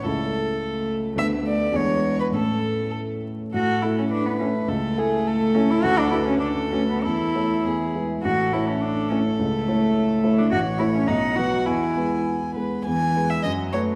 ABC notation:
X:1
M:2/4
L:1/16
Q:1/4=104
K:A
V:1 name="Violin"
A6 z2 | e2 d2 c3 B | A4 z4 | A4 B4 |
A2 G2 A4 | A4 A4 | A4 G2 z2 | A8- |
A8 | [K:E] c4 f4 | g6 B2 | g3 e d2 c2 |]
V:2 name="Cello"
A,4 A,4 | A,4 G,4 | A,6 z2 | F2 E C D B, C2 |
A,6 C E | F D E C D2 C B, | E6 z2 | F2 E C D2 C2 |
A,6- A, D | [K:E] F2 E C D2 F2 | E4 z4 | E,4 F,4 |]
V:3 name="Grand piano"
[C,,CEA]8 | [D,,B,DA]4 [E,,B,DG]4 | [A,,A,CA]8 | A,,2 [A,EA]4 [A,EA]2 |
C,,2 [A,EA]4 [A,EA]2 | D,,2 [A,FB]4 [A,FB]2 | E,,2 [A,Ec]2 E,,2 [G,EB]2 | A,,,2 [A,Ec]4 [A,Ec]2 |
C,,2 [A,Ec]4 [A,Ec]2 | [K:E] A,,,2 [A,Ec]2 B,,,2 [F,B,B]2 | E,,2 [G,B,B]4 [G,B,B]2 | E,,2 [G,B]2 F,,2 [A,B]2 |]